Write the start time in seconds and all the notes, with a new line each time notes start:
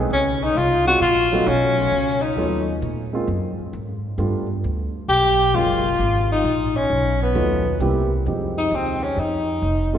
0.10 C#2 C#4
0.44 D#4
0.55 C2 F4
0.86 G#3 C4 C#4 D#4 F4 F#4
1.01 A#1 F4
1.32 F#3 A3 B3 D#4 F#4
1.46 B1 C#4
1.92 C#2
2.22 D#4
2.36 D#2 F#3 A3 B3 D#4 F4
2.82 A#2
3.13 G#3 A#3 C4 C#4 F4
3.27 F#2
3.59 muted upright bass stroke
3.73 G#2
4.18 G2 G3 A3 B3 D4 F4
4.64 D2
5.08 B1 G4
5.54 F#1 F#3 G#3 A#3 C#4 F4
5.99 G#1
6.32 D#4
6.44 A#1
6.77 C#4
6.90 B1
7.23 B3
7.34 D#2 F#3 A3 B3 D#4 F4
7.80 C2 G3 A#3 C4 E4 G4
8.26 F2 F3 G#3 C4 D#4 G4
8.58 D#4
8.71 D#2 C4
9.03 C#4
9.17 F2 D#4
9.62 F1
9.93 G3 A3 C4 D#4 F4